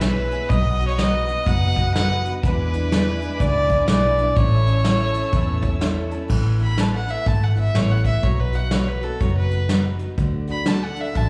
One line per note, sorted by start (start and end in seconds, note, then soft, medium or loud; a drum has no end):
0.00 0.38 B1 medium
0.00 0.31 E3 medium
0.00 0.32 G#3 medium
0.00 0.38 E4 medium
0.00 0.38 G#4 medium
0.00 0.48 B4 medium
0.00 0.50 B4 medium
0.00 0.38 C#5 medium
0.00 0.49 E5 medium
0.00 0.48 G#5 medium
0.00 0.49 E6 medium
0.00 snare loud
0.00 closed hi-hat medium
0.04 0.32 B3 medium
0.04 0.31 G#4 medium
0.31 0.51 G#3 soft
0.31 0.51 B3 medium
0.31 0.50 G#4 medium
0.31 closed hi-hat medium
0.36 0.51 E3 medium
0.49 1.34 B1 loud
0.49 0.80 B2 medium
0.49 0.80 F#3 medium
0.49 0.81 B3 medium
0.49 0.79 D#4 medium
0.49 0.78 F#4 medium
0.49 4.33 B4 medium
0.49 0.87 D#5 loud
0.49 2.42 D#5 medium
0.49 2.41 F#5 medium
0.49 2.41 D#6 medium
0.49 kick loud
0.49 closed hi-hat medium
0.79 0.97 B3 soft
0.79 0.98 D#4 soft
0.79 0.98 F#4 medium
0.79 closed hi-hat medium
0.87 0.99 C#5 medium
0.98 1.28 F#3 medium
0.98 1.28 B3 medium
0.98 1.34 D#4 medium
0.98 1.29 D#4 medium
0.98 1.35 F#4 medium
0.98 1.26 F#4 medium
0.98 1.35 B4 medium
0.98 1.49 D#5 loud
0.98 snare loud
0.98 closed hi-hat medium
1.27 1.45 B3 soft
1.27 1.46 D#4 medium
1.27 1.46 F#4 medium
1.27 closed hi-hat medium
1.46 2.31 F#1 medium
1.46 1.76 B2 medium
1.46 1.76 F#3 medium
1.46 1.76 B3 medium
1.46 1.77 D#4 medium
1.46 1.75 F#4 medium
1.46 1.93 F#5 loud
1.46 kick loud
1.46 closed hi-hat medium
1.76 1.95 B3 soft
1.76 1.96 D#4 soft
1.76 1.95 F#4 medium
1.76 kick medium
1.76 closed hi-hat medium
1.94 2.25 F#3 medium
1.94 2.26 B3 medium
1.94 2.31 D#4 medium
1.94 2.26 D#4 medium
1.94 2.31 F#4 medium
1.94 2.32 B4 medium
1.94 2.31 F#5 loud
1.94 snare loud
1.94 closed hi-hat medium
1.99 2.24 F#4 medium
2.25 2.45 B3 soft
2.25 2.44 D#4 medium
2.25 2.43 F#4 medium
2.25 closed hi-hat medium
2.43 3.28 E2 medium
2.43 2.73 E2 medium
2.43 2.74 B2 medium
2.43 2.74 E3 medium
2.43 2.74 G#3 medium
2.43 2.74 D4 medium
2.43 2.72 E4 medium
2.43 3.42 B4 loud
2.43 6.27 E5 medium
2.43 4.35 G#5 medium
2.43 4.35 D6 medium
2.43 kick loud
2.43 closed hi-hat medium
2.73 2.91 E3 soft
2.73 2.92 G#3 soft
2.73 2.93 D4 soft
2.73 2.92 E4 medium
2.73 closed hi-hat medium
2.92 3.22 E3 medium
2.92 3.22 G#3 medium
2.92 3.22 D4 medium
2.92 3.28 E4 medium
2.92 3.20 E4 medium
2.92 3.28 G#4 medium
2.92 3.29 B4 medium
2.92 snare loud
2.92 closed hi-hat medium
3.21 3.41 E3 medium
3.21 3.41 G#3 medium
3.21 3.41 D4 medium
3.21 3.40 E4 medium
3.21 closed hi-hat medium
3.40 3.81 C#2 medium
3.40 3.70 E2 medium
3.40 3.70 B2 medium
3.40 3.71 E3 medium
3.40 3.71 G#3 medium
3.40 3.71 D4 medium
3.40 3.70 E4 medium
3.40 3.87 D5 loud
3.40 kick loud
3.40 closed hi-hat medium
3.70 3.90 D4 soft
3.70 3.89 E4 medium
3.70 kick medium
3.70 closed hi-hat medium
3.74 3.89 E3 soft
3.74 3.90 G#3 soft
3.88 4.29 B1 medium
3.88 4.19 E3 medium
3.88 4.20 G#3 medium
3.88 4.25 E4 medium
3.88 4.25 G#4 medium
3.88 4.25 B4 medium
3.88 4.37 D5 medium
3.88 snare loud
3.88 closed hi-hat medium
3.92 4.20 D4 medium
3.92 4.18 E4 medium
4.18 4.38 D4 medium
4.18 4.37 E4 medium
4.18 closed hi-hat medium
4.22 4.37 E3 soft
4.22 4.38 G#3 medium
4.36 5.21 A1 medium
4.36 4.67 A2 medium
4.36 4.67 E3 medium
4.36 4.68 A3 medium
4.36 4.66 C#4 medium
4.36 4.65 E4 medium
4.36 5.81 C#5 loud
4.36 6.29 C#5 medium
4.36 6.29 A5 medium
4.36 6.29 E6 medium
4.36 kick loud
4.36 closed hi-hat medium
4.66 4.85 A3 soft
4.66 4.85 C#4 medium
4.66 4.85 E4 medium
4.66 closed hi-hat medium
4.84 5.15 E3 medium
4.84 5.15 A3 medium
4.84 5.14 C#4 medium
4.84 5.21 E4 medium
4.84 5.13 E4 medium
4.84 5.21 A4 medium
4.84 5.22 C#5 medium
4.84 snare loud
4.84 closed hi-hat medium
5.14 5.32 A3 medium
5.14 5.33 C#4 medium
5.14 5.33 E4 medium
5.14 closed hi-hat medium
5.32 6.18 E2 medium
5.32 5.63 A2 medium
5.32 5.63 E3 medium
5.32 5.63 A3 medium
5.32 5.62 C#4 medium
5.32 5.61 E4 loud
5.32 kick loud
5.32 closed hi-hat medium
5.62 5.81 A3 soft
5.62 5.82 C#4 medium
5.62 5.81 E4 medium
5.62 5.80 C#5 medium
5.62 kick medium
5.62 closed hi-hat medium
5.81 6.11 E3 medium
5.81 6.12 A3 medium
5.81 6.11 C#4 medium
5.81 6.18 E4 medium
5.81 6.10 E4 medium
5.81 6.18 A4 medium
5.81 6.18 C#5 loud
5.81 6.10 E5 medium
5.81 snare loud
5.81 closed hi-hat medium
6.11 6.29 A3 soft
6.11 6.30 C#4 medium
6.11 6.30 E4 medium
6.11 6.29 A5 medium
6.11 closed hi-hat medium
6.28 7.14 A1 medium
6.28 6.59 A2 medium
6.28 6.60 E3 medium
6.28 6.60 A3 medium
6.28 6.59 B3 medium
6.28 6.57 E4 medium
6.28 kick loud
6.28 crash medium
6.59 6.77 A3 soft
6.59 6.77 B3 soft
6.59 6.78 E4 soft
6.59 closed hi-hat medium
6.63 6.81 B5 medium
6.76 7.07 E3 medium
6.76 7.08 A3 medium
6.76 7.07 B3 medium
6.76 7.15 E4 medium
6.76 7.05 E4 medium
6.76 7.15 A4 medium
6.76 7.15 B4 medium
6.76 6.95 A5 medium
6.76 snare loud
6.76 closed hi-hat medium
6.96 7.11 F#5 medium
7.07 7.26 A3 soft
7.07 7.27 B3 soft
7.07 7.26 E4 soft
7.07 7.29 E5 medium
7.07 closed hi-hat medium
7.26 7.68 G#1 medium
7.26 7.57 A2 medium
7.26 7.57 E3 medium
7.26 7.57 A3 medium
7.26 7.56 B3 medium
7.26 7.54 E4 medium
7.26 7.45 A5 medium
7.26 kick loud
7.26 closed hi-hat medium
7.44 7.58 F#5 medium
7.55 7.74 A3 soft
7.55 7.76 B3 soft
7.55 7.75 E4 soft
7.55 7.77 E5 medium
7.55 closed hi-hat medium
7.75 8.16 A1 medium
7.75 8.05 E3 medium
7.75 8.06 A3 medium
7.75 8.05 B3 medium
7.75 8.12 E4 medium
7.75 8.03 E4 medium
7.75 8.12 A4 medium
7.75 8.13 B4 medium
7.75 7.92 C#5 medium
7.75 snare loud
7.75 closed hi-hat medium
7.91 8.05 F#5 medium
8.04 8.24 A3 soft
8.04 8.23 B3 soft
8.04 8.24 E4 medium
8.04 8.25 E5 medium
8.04 kick medium
8.04 closed hi-hat medium
8.23 9.09 B1 medium
8.23 8.54 B2 medium
8.23 8.54 F#3 medium
8.23 8.54 B3 medium
8.23 8.53 D#4 medium
8.23 8.51 F#4 medium
8.23 8.41 C#5 medium
8.23 kick loud
8.23 closed hi-hat medium
8.40 8.57 B4 medium
8.53 8.71 B3 soft
8.53 8.72 D#4 soft
8.53 8.72 F#4 soft
8.53 8.73 F#5 medium
8.53 closed hi-hat medium
8.71 9.02 F#3 medium
8.71 9.03 B3 medium
8.71 9.09 D#4 medium
8.71 9.01 D#4 medium
8.71 9.09 F#4 medium
8.71 8.99 F#4 medium
8.71 9.09 B4 medium
8.71 8.90 C#5 medium
8.71 snare loud
8.71 closed hi-hat medium
8.88 9.05 B4 medium
9.01 9.19 B3 soft
9.01 9.20 D#4 soft
9.01 9.20 F#4 soft
9.01 9.22 A4 medium
9.01 closed hi-hat medium
9.20 10.06 F#1 medium
9.20 9.50 B2 medium
9.20 9.51 F#3 medium
9.20 9.51 B3 medium
9.20 9.50 D#4 medium
9.20 9.49 F#4 medium
9.20 9.36 C#5 medium
9.20 kick loud
9.20 closed hi-hat medium
9.37 9.84 B4 medium
9.50 9.69 B3 soft
9.50 9.70 D#4 soft
9.50 9.69 F#4 soft
9.50 closed hi-hat medium
9.69 10.00 F#3 medium
9.69 10.00 B3 medium
9.69 10.06 D#4 medium
9.69 10.00 D#4 medium
9.69 10.07 F#4 medium
9.69 9.98 F#4 medium
9.69 10.07 B4 medium
9.69 snare loud
9.69 closed hi-hat medium
9.99 10.18 B3 soft
9.99 10.19 D#4 soft
9.99 10.18 F#4 medium
9.99 closed hi-hat medium
10.17 11.03 D2 medium
10.17 10.48 D3 medium
10.17 10.49 A3 medium
10.17 10.48 D4 medium
10.17 10.46 F#4 medium
10.17 kick loud
10.17 closed hi-hat medium
10.47 10.66 A3 soft
10.47 10.67 D4 soft
10.47 10.67 F#4 medium
10.47 10.69 B5 medium
10.47 closed hi-hat medium
10.66 10.97 D3 medium
10.66 10.97 A3 medium
10.66 11.03 D4 medium
10.66 10.97 D4 medium
10.66 11.04 F#4 medium
10.66 10.95 F#4 medium
10.66 11.04 A4 medium
10.66 10.85 A5 medium
10.66 snare loud
10.66 closed hi-hat medium
10.84 11.02 F#5 medium
10.96 11.14 A3 soft
10.96 11.15 D4 medium
10.96 11.15 F#4 medium
10.96 closed hi-hat medium
11.00 11.18 E5 medium
11.15 11.29 A1 medium
11.15 11.29 D3 medium
11.15 11.29 A3 medium
11.15 11.29 D4 medium
11.15 11.29 F#4 medium
11.15 11.29 A5 medium
11.15 kick loud
11.15 closed hi-hat medium